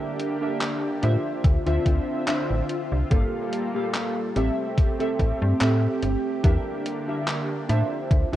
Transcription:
Already playing: D3 A#3 D4 G4 A#4 E5
0.19 closed hi-hat
0.41 D4 G4 A#4 E5
0.61 clap, closed hi-hat
1.02 A2 D4 F4 C5 E5, closed hi-hat
1.44 D2 D3 C4 F4 E5, kick, closed hi-hat
1.66 D2 D4 F4 C5 E5, closed hi-hat
1.86 D2, kick, closed hi-hat
2.27 D4 F4 C5 E5, clap, closed hi-hat
2.50 A1
2.69 closed hi-hat
2.92 C2
3.10 G1 G3 A#3 G4 A4 F5, kick, closed hi-hat
3.53 closed hi-hat
3.74 A#3 G4 A4 F5
3.94 clap, closed hi-hat
4.35 A1 A3 C4 G4 A4 E5, closed hi-hat
4.78 kick, closed hi-hat
4.99 C4 G4 A4 E5, closed hi-hat
5.19 A1, kick, closed hi-hat
5.42 G2
5.60 A2 C4 G4 A4 E5, clap, closed hi-hat
6.03 G1, closed hi-hat
6.43 E2 D3 A#3 D4 G4 A#4 E5, kick, closed hi-hat
6.86 closed hi-hat
7.07 D4 G4 A#4 E5
7.28 clap, closed hi-hat
7.69 A2 D4 F4 C5 E5, closed hi-hat
8.11 D2 D3 C4 F4 E5, kick, closed hi-hat
8.33 D4

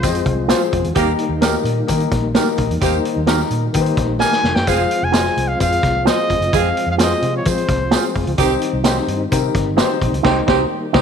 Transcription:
Already playing: F3 G#3 C4 F4 C5
0.03 F2 C4 F4 G4 D#5, kick, closed hi-hat, tambourine
0.10 G#4
0.15 closed hi-hat
0.26 C2, kick, closed hi-hat
0.48 C4 F4 G#4 C5, snare, closed hi-hat, tambourine
0.73 F1, kick, closed hi-hat
0.84 E2, closed hi-hat
0.95 D#2 D#3 G3 A#3 D#4 G4 A#4, kick, closed hi-hat, tambourine
1.19 closed hi-hat
1.29 D#2
1.41 A#3 D#4 G4 A#4, snare, closed hi-hat, tambourine
1.64 A#2, closed hi-hat
1.87 D#3 A#3 D#4 G4 A#4, kick, closed hi-hat, tambourine
2.00 closed hi-hat
2.12 A#1, kick, snare, closed hi-hat
2.34 A#3 D#4 G4 A#4, snare, closed hi-hat, tambourine
2.58 A#1, kick, closed hi-hat
2.70 E2, closed hi-hat
2.81 D#2 A#3 D#4 G4 C5, kick, closed hi-hat, tambourine
3.05 closed hi-hat
3.16 D#2
3.26 A#3 D#4 G4 A#4, snare, closed hi-hat, tambourine
3.40 snare
3.50 A#2, closed hi-hat
3.73 D#3 A#3 D#4 G4 B4, kick, closed hi-hat, tambourine
3.81 C5
3.86 closed hi-hat
3.97 A#1, kick, snare, closed hi-hat
4.19 G3 A#3 D#4 G4 A#4 G#5, snare, tambourine
4.33 snare
4.43 F1, snare
4.55 F#2 G5, snare
4.67 F1 F3 G#3 C4 F4 G#4 C5 F5, kick, closed hi-hat, tambourine
4.91 closed hi-hat
5.02 F1 G#5
5.12 C4 F4 G#4 C5 D#5, snare, closed hi-hat, tambourine
5.26 snare
5.37 C2, closed hi-hat
5.48 F5
5.59 F2 C4 F4 G#4 C5 F5, kick, closed hi-hat, tambourine
5.72 closed hi-hat
5.83 C2, kick, snare, closed hi-hat
6.05 C4 F4 G#4 C5, snare, closed hi-hat, tambourine
6.09 D#5
6.30 F1, kick, closed hi-hat
6.39 F#1, closed hi-hat
6.53 F2 C4 F4 G4 G#4 D#5 F5, kick, closed hi-hat, tambourine
6.60 G#4
6.77 closed hi-hat
6.86 F2
6.91 F5
6.98 C4 F4 G#4 C5, snare, closed hi-hat, tambourine
7.03 D#5
7.22 C3, closed hi-hat
7.37 C#5
7.45 F3 C4 F4 G#4 C5, kick, closed hi-hat, tambourine
7.58 closed hi-hat
7.69 C2, kick, snare, closed hi-hat
7.91 C4 F4 G#4 C5, snare, closed hi-hat, tambourine
8.15 F1, kick, open hi-hat
8.27 C#2, closed hi-hat
8.38 C2 D#3 G3 C4 D#4 G4 A#4, kick, closed hi-hat, tambourine
8.46 C5
8.62 closed hi-hat
8.73 C2
8.84 C4 D#4 G4 C5, snare, closed hi-hat, tambourine
8.97 snare
9.08 G2, closed hi-hat
9.31 C3 C4 D#4 G4 A#4, kick, closed hi-hat, tambourine
9.55 G1, kick, snare, closed hi-hat
9.77 C4 D#4 G4 B4 C5, snare, closed hi-hat, tambourine
9.84 C5
10.02 A#1, kick, closed hi-hat
10.12 C#2, closed hi-hat
10.23 C2 A#3 C4 D#4 G4 C5, kick, snare, crash
10.47 C2 C4 D#4 G4 C5, kick, snare
10.93 C2 C4 D#4 G4 C5, kick, snare

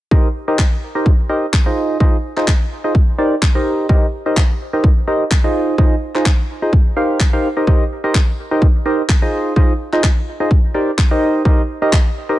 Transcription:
0.11 D#4 G4 A#4 C5 D#5, kick
0.48 D#4 G4 A#4 C5 D#5
0.59 kick, clap
0.95 D#4 G4 A#4 C5 D#5
1.06 kick
1.29 D#4 G4 A#4 C5 D#5
1.53 kick, clap
1.66 D#4 F4 G#4 C5 D#5
2.00 D#4 F4 G#4 C5 D#5, kick
2.37 D#4 F4 G#4 C5 D#5, clap
2.48 kick, clap
2.84 D#4 F4 G#4 C5 D#5
2.95 kick
3.18 D#4 G4 A#4 C5 D5
3.42 kick, clap
3.55 D#4 G4 A#4 C5 D#5
3.89 D#4 G4 A#4 C5 D#5, kick
4.26 D#4 G4 A#4 C5 D#5
4.37 kick, clap
4.73 D#4 G4 A#4 C5 D#5
4.84 kick
5.08 D#4 G4 A#4 C5 D#5
5.31 kick, clap
5.44 D#4 F4 G#4 C5 D#5
5.78 D#4 F4 G#4 C5 D#5, kick
6.15 D#4 F4 G#4 C5 D#5, clap
6.26 kick, clap
6.62 D#4 F4 G#4 C5 D#5
6.73 kick
6.97 D#4 G4 A#4 C5 F5
7.20 kick, clap
7.33 D#4 G4 A#4 C5 F5
7.57 D#4 G4 A#4 C5 D#5
7.67 D#4 G4 A#4 C5 D#5, kick
8.04 D#4 G4 A#4 C5 D#5
8.15 kick, clap
8.51 D#4 G4 A#4 C5 D#5
8.62 kick
8.86 D#4 G4 A#4 C5 D#5
9.09 kick, clap
9.22 D#4 F4 G#4 C5 D#5
9.56 D#4 F4 G#4 C5 D#5, kick
9.93 D#4 F4 G#4 C5 D#5, clap
10.04 kick, clap
10.40 D#4 F4 G#4 C5 D#5
10.51 kick
10.74 D#4 G4 A#4 C5 D5
10.98 kick, clap
11.11 D#4 G4 A#4 C5 D#5
11.45 D#4 G4 A#4 C5 D#5, kick
11.82 D#4 G4 A#4 C5 D#5
11.93 kick, clap
12.29 D#4 G4 A#4 C5 D#5

